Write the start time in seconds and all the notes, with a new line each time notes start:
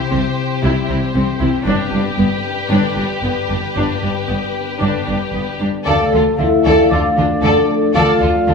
Already playing: C3 G3 C4 E4 G4 C5
0.11 C2 C3 C4 C5
0.28 G4
0.46 E4
0.63 C2 C3 G3 E4
0.80 C4
0.89 C2 C3 E4
0.97 E4
1.14 C2 C3 C4 C5
1.32 G4
1.40 C2 C3 E4
1.50 E4
1.65 G1 G2 D4 G4 B4
1.84 B3
1.92 G1 G2 D4
2.01 D4
2.18 G1 G2 B3 B4
2.36 G4
2.53 D4
2.70 G1 G2 D3 D4
2.88 B3
2.96 G1 G2 D4
3.06 D4
3.23 G1 G2 B3 B4
3.42 G4
3.49 G1 G2 D4
3.59 D4
3.75 G1 G2 D4
3.93 B3
4.02 G1 G2 D4
4.09 D4
4.27 G1 G2 B3 B4
4.45 G4
4.63 D4
4.81 G1 G2 D3 D4
4.98 B3
5.07 G1 G2 D4
5.16 D4
5.33 G1 G2 B3 B4
5.51 G4
5.60 G1 G2 D4
5.70 D4
5.85 D2 D3 F3 A3 A4 D5 F5
6.00 A3
6.11 D2 D3 D4 F4 A4
6.26 F4
6.38 D2 D3 D4 E4 F4 A4 E5
6.52 D5
6.65 D2 D3 A4 D5 F5
6.80 A5
6.90 D2 D3 D4 F4 A4 D5 F5
7.06 D5
7.17 D2 D3 D4 F4 A4
7.32 D4
7.43 D2 D3 A3 A4 D5
7.57 D4
7.71 A3
7.84 D4
7.94 D2 D3 F4 A4 D5 F5
8.10 A3
8.20 D2 D3 D4 F4 A4
8.36 F4
8.47 D2 D3 D4 F4 A4